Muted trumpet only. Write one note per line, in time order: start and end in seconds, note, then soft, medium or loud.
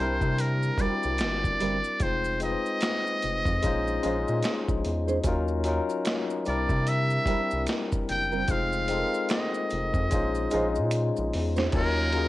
0.00 0.42 C5 medium
0.41 0.82 A#4 medium
0.81 2.04 D5 loud
2.03 2.42 C5 medium
2.43 4.81 D#5 loud
6.48 6.90 D5 medium
6.89 7.69 E5 loud
8.11 8.53 G5 loud
8.51 9.31 F5 loud
9.32 10.89 D#5 medium
11.76 12.28 A#4 loud